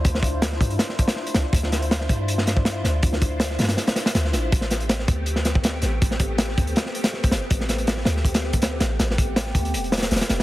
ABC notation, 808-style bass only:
X:1
M:4/4
L:1/16
Q:"Swing 16ths" 1/4=161
K:Dm
V:1 name="808-style bass" clef=bass
D,,6 G,,2 z6 C,,2 | D,,6 G,,8 D,,2 | D,,6 G,,2 z4 D,,2 A,,,2 | A,,,6 D,,8 A,,,2 |
A,,,6 D,,2 z6 G,,,2 | A,,,6 D,,8 A,,,2 | A,,,6 D,,2 E,,,4 E,,,2 E,,, z |]